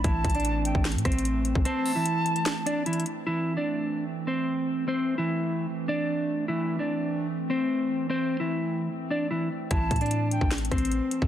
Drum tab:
HH |x-----------x--x--x--x--x-----------x-----------x---x---x---x---x---x---x-----------x-----------|x-----------o-----------x-----------x-----x-----x-----------x-----------x---x---x---x-----------|------------------------------------------------------------------------------------------------|------------------------------------------------------------------------------------------------|
SD |------------------------------------------------o-----------r-----------------------------------|------------------------------------------------o-----------------------------------------------|------------------------------------------------------------------------------------------------|------------------------------------------------------------------------------------------------|
BD |o-----------o-----------------------------o-----------------o-----------------------------o-----|------------------------------------------------------------------------------------------------|------------------------------------------------------------------------------------------------|------------------------------------------------------------------------------------------------|

HH |------------------------------------------------------------------------------------------------|------------------------------------------------------------------------------------------------|x-----------x--x--x--x--x-----------x-----------x---x---x---x---x---x---x-----------x-----------|
SD |------------------------------------------------------------------------------------------------|------------------------------------------------------------------------------------------------|------------------------------------------------o-----------r-----------------------------------|
BD |------------------------------------------------------------------------------------------------|------------------------------------------------------------------------------------------------|o-----------o-----------------------------o-----------------o-----------------------------o-----|